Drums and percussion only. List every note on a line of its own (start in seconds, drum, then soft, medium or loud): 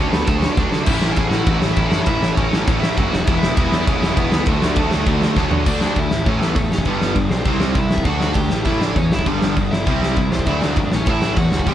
0.13 snare loud
0.27 kick loud
0.27 ride medium
0.42 snare loud
0.57 kick loud
0.57 snare medium
0.72 snare loud
0.86 kick loud
0.86 crash loud
1.01 snare loud
1.16 kick loud
1.16 ride medium
1.31 snare loud
1.46 kick loud
1.46 ride medium
1.62 snare loud
1.76 kick loud
1.76 ride medium
1.92 snare loud
2.06 kick loud
2.06 ride medium
2.23 snare loud
2.37 kick loud
2.37 ride medium
2.53 snare loud
2.67 kick loud
2.67 ride medium
2.83 snare loud
2.97 kick loud
2.97 ride medium
3.13 snare loud
3.27 kick loud
3.27 ride medium
3.43 snare loud
3.57 kick loud
3.57 ride loud
3.72 snare loud
3.87 kick loud
3.87 ride medium
4.03 snare loud
4.17 kick loud
4.17 ride medium
4.32 snare loud
4.46 kick loud
4.46 ride medium
4.62 snare loud
4.76 kick loud
4.76 ride medium
4.91 snare loud
5.06 kick loud
5.06 ride medium
5.22 snare loud
5.36 kick loud
5.36 snare medium
5.51 floor tom loud
5.66 kick loud
5.66 crash loud
5.66 crash medium
5.81 snare loud
5.96 kick loud
5.96 crash medium
6.11 snare medium
6.26 kick loud
6.26 crash medium
6.42 snare loud
6.56 kick loud
6.56 crash medium
6.72 snare loud
6.78 kick medium
6.85 kick medium
6.85 crash medium
7.01 snare loud
7.16 kick loud
7.16 crash medium
7.31 snare medium
7.45 kick loud
7.45 crash medium
7.60 snare loud
7.75 kick loud
7.75 crash medium
7.91 snare loud
7.98 kick medium
8.05 kick loud
8.05 crash medium
8.21 snare medium
8.34 kick loud
8.34 crash medium
8.50 snare medium
8.65 kick loud
8.65 crash medium
8.81 snare loud
8.96 kick loud
8.96 crash medium
9.12 snare loud
9.19 kick medium
9.26 kick loud
9.26 crash medium
9.42 snare medium
9.56 kick loud
9.56 crash medium
9.73 snare loud
9.87 kick loud
9.87 crash medium
10.03 snare loud
10.16 kick loud
10.16 crash soft
10.32 snare loud
10.39 kick medium
10.46 kick loud
10.46 crash medium
10.62 snare loud
10.76 kick loud
10.76 crash medium
10.92 snare loud
11.06 kick loud
11.06 crash medium
11.22 snare loud
11.36 kick loud
11.36 crash medium
11.52 snare loud
11.59 kick medium
11.67 kick loud
11.67 crash medium